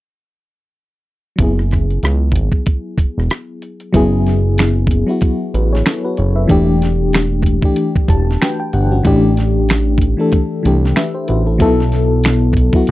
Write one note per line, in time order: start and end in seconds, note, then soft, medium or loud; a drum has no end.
1.36 1.99 F#1 medium
1.36 3.89 F#3 medium
1.36 3.90 B3 medium
1.36 kick medium
1.36 closed hi-hat medium
1.41 3.91 E4 medium
1.41 3.92 G#4 medium
1.59 cross-stick soft
1.71 kick medium
1.71 cross-stick soft
1.71 closed hi-hat soft
1.90 closed hi-hat soft
2.03 2.32 C#2 medium
2.03 cross-stick medium
2.03 closed hi-hat medium
2.32 2.50 G#1 medium
2.32 kick medium
2.32 closed hi-hat medium
2.52 kick medium
2.66 kick medium
2.66 closed hi-hat medium
2.98 3.05 E1 soft
2.98 kick medium
2.98 closed hi-hat medium
3.18 3.29 E1 medium
3.18 cross-stick soft
3.30 cross-stick medium
3.30 closed hi-hat medium
3.62 closed hi-hat medium
3.80 closed hi-hat soft
3.93 5.04 F#1 loud
3.93 4.81 F#3 loud
3.93 4.82 B3 medium
3.93 4.83 E4 medium
3.93 4.83 G#4 loud
3.93 kick loud
3.93 closed hi-hat medium
4.27 snare soft
4.27 closed hi-hat medium
4.58 finger snap medium
4.58 snare medium
4.58 closed hi-hat medium
4.87 kick medium
4.87 closed hi-hat medium
5.07 5.44 F#3 medium
5.07 5.44 B3 medium
5.07 5.45 E4 medium
5.07 5.46 F#4 medium
5.21 kick medium
5.21 closed hi-hat medium
5.54 5.83 A1 medium
5.54 5.72 F#4 soft
5.54 5.71 B4 medium
5.54 closed hi-hat medium
5.73 5.86 G#4 soft
5.73 5.85 C#5 medium
5.73 snare soft
5.86 6.04 E4 medium
5.86 6.03 A4 medium
5.86 finger snap medium
5.86 snare medium
5.86 closed hi-hat medium
6.05 6.18 F#4 medium
6.05 6.17 B4 medium
6.17 6.47 F#1 medium
6.17 6.35 G#4 medium
6.17 6.35 C#5 medium
6.17 closed hi-hat medium
6.36 6.66 B4 medium
6.36 6.66 E5 medium
6.47 7.60 E1 medium
6.47 7.36 E3 loud
6.47 7.37 A3 medium
6.47 7.38 D4 medium
6.47 7.38 G4 loud
6.47 kick medium
6.47 closed hi-hat medium
6.82 snare soft
6.82 closed hi-hat medium
7.13 finger snap medium
7.13 snare medium
7.13 closed hi-hat medium
7.43 kick medium
7.43 closed hi-hat medium
7.62 7.99 E3 medium
7.62 7.99 A3 medium
7.62 8.00 D4 medium
7.62 8.01 G4 medium
7.62 kick medium
7.76 closed hi-hat medium
7.96 kick medium
8.08 8.38 E1 medium
8.08 8.39 A5 medium
8.08 kick medium
8.08 closed hi-hat medium
8.31 snare soft
8.41 8.72 F#4 soft
8.41 8.72 B4 medium
8.41 8.58 G5 medium
8.41 finger snap medium
8.41 snare loud
8.41 closed hi-hat medium
8.60 8.72 G5 medium
8.73 9.02 G1 medium
8.73 8.91 D4 medium
8.73 8.90 G4 medium
8.73 9.03 F#5 medium
8.73 closed hi-hat medium
8.92 9.22 C#4 medium
8.92 9.22 F#4 medium
9.03 10.15 A1 loud
9.03 9.92 E3 loud
9.03 9.93 A3 loud
9.03 9.93 D4 loud
9.03 9.94 G4 loud
9.03 kick loud
9.03 closed hi-hat medium
9.37 snare soft
9.37 closed hi-hat medium
9.69 finger snap medium
9.69 snare medium
9.69 closed hi-hat medium
9.98 kick medium
9.98 closed hi-hat medium
10.17 10.54 E3 medium
10.17 10.55 A3 medium
10.17 10.56 D4 medium
10.17 10.56 A4 medium
10.32 kick medium
10.32 closed hi-hat medium
10.63 10.94 C2 medium
10.63 11.39 E3 medium
10.63 11.40 A3 medium
10.63 11.41 D4 medium
10.63 10.97 G4 medium
10.63 closed hi-hat medium
10.85 snare soft
10.96 11.14 B4 soft
10.96 11.14 E5 medium
10.96 finger snap medium
10.96 snare medium
10.96 closed hi-hat medium
11.14 11.28 G4 medium
11.14 11.27 C5 medium
11.28 11.62 A1 medium
11.28 11.46 F#4 medium
11.28 11.45 B4 medium
11.28 closed hi-hat medium
11.47 11.60 E4 medium
11.47 11.61 A4 medium
11.58 12.70 B1 loud
11.58 12.47 F#3 loud
11.58 12.48 B3 medium
11.58 12.48 E4 medium
11.58 12.49 A4 loud
11.58 kick loud
11.58 closed hi-hat medium
11.80 snare soft
11.92 snare soft
11.92 closed hi-hat medium
12.24 finger snap medium
12.24 snare medium
12.24 closed hi-hat medium
12.53 kick medium
12.53 closed hi-hat medium
12.72 12.91 F#3 medium
12.72 12.91 B3 medium
12.72 12.91 E4 medium
12.72 12.91 F#4 medium
12.72 kick medium
12.87 closed hi-hat medium